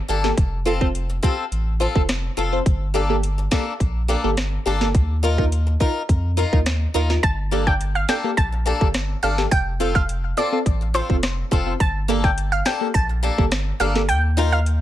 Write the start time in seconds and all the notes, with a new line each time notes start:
0.08 G1 A#3 D4 G4 A4
0.24 A#3 G4 A4, snare
0.37 F1, kick, closed hi-hat
0.65 C4 F4 A4
0.81 C4 F4 C5, kick
0.95 closed hi-hat
1.10 muted steel-string acoustic guitar stroke
1.23 C4 F4 G4 A4, kick
1.52 A1, closed hi-hat
1.80 C4 F4 A4 C5
1.95 F1 C4 F4 A4, kick
2.09 cross-stick, snare, closed hi-hat
2.37 F1 C4 F4 A4
2.52 C4 F4 C5
2.66 G1, kick, closed hi-hat
2.94 A#3 D4 G4 A4
3.10 A#3 G4 A4
3.23 closed hi-hat
3.38 muted steel-string acoustic guitar stroke
3.51 A#3 D4 G4 A4, kick, cross-stick, snare
3.80 A#1, kick, closed hi-hat
4.08 A#3 D4 G4 A4
4.24 G1 A#3 G4 A4
4.37 cross-stick, snare, closed hi-hat
4.66 G1 A#3 D4 G4 A4
4.81 A#3 G4 A4, snare
4.95 D#2, kick, closed hi-hat
5.23 D#4 F4 A#4
5.38 D#4 F4 A#4, kick
5.52 closed hi-hat
5.67 muted steel-string acoustic guitar stroke
5.80 D#4 F4 A#4, kick
6.09 F2, kick, closed hi-hat
6.37 D#4 F4 A#4
6.53 D#2 D#4 F4 A#4, kick
6.66 cross-stick, snare, closed hi-hat
6.94 D#2 D#4 F4 A#4
7.10 D#4 F4 A#4, muted steel-string acoustic guitar stroke, snare
7.23 G1 A5, kick, closed hi-hat
7.51 A#3 D4 G4 A4
7.67 G5, kick
7.81 closed hi-hat
7.95 F5
8.08 A#3 D4 G4 A4 G5, cross-stick, snare
8.24 A#3 G4 A4
8.37 A#1 A5, kick, closed hi-hat
8.52 muted steel-string acoustic guitar stroke
8.66 A#3 D4 G4 A4
8.81 G1 A#3 G4 A4, kick
8.94 cross-stick, snare, closed hi-hat
9.23 G1 A#3 D4 G4 A4 F5
9.38 A#3 G4 A4, snare
9.51 F1 G5, kick, closed hi-hat
9.80 C4 F4 A4
9.95 F5, kick
10.09 closed hi-hat
10.37 C4 F4 A4 D5
10.52 C4 F4 A4
10.66 A1, kick, closed hi-hat
10.81 muted steel-string acoustic guitar stroke
10.94 C4 F4 A4 C5
11.09 F1 C4 F4 A4, kick
11.23 cross-stick, snare, closed hi-hat
11.51 F1 C4 F4 A4, kick
11.66 C4 F4 C5
11.80 G1 A5, kick, closed hi-hat
12.08 A#3 D4 G4 A4
12.24 G5, kick
12.38 closed hi-hat
12.52 F5
12.65 A#3 D4 G4 A4 C5 G5, cross-stick, snare
12.81 A#3 G4 A4
12.94 A#1 A5, kick, closed hi-hat
13.09 muted steel-string acoustic guitar stroke
13.23 A#3 D4 G4 A4
13.38 G1 A#3 G4 A4, kick
13.52 cross-stick, snare, closed hi-hat
13.80 G1 A#3 D4 G4 A4 F5
13.95 A#3 G4 A4, snare
14.09 D#2 G5, closed hi-hat
14.37 D#4 F4 A#4
14.52 F5
14.66 closed hi-hat